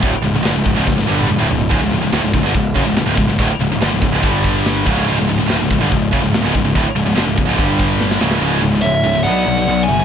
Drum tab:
CC |----------------|x---------------|--------------x-|----------------|
HH |o-o-o-o---------|--o-o-o-o-o-o-o-|o-o-o-o-o-o-o---|--o-o-o-o-o-o-o-|
SD |----o---oo------|----o-------o--o|----o-------o--o|----o-------o---|
T1 |-----------o----|----------------|----------------|----------------|
T2 |------------o---|----------------|----------------|----------------|
FT |--------------oo|----------------|----------------|----------------|
BD |o-----o-o-------|o-----o-o-o---o-|o-----o-o-o---o-|------o-o-o---o-|

CC |----------------|----------------|
HH |o-o-o-o-o-o-----|----------------|
SD |----o-------oooo|----------------|
T1 |----------------|----------------|
T2 |----------------|----------------|
FT |----------------|----------------|
BD |o-----o-o-o-----|----------------|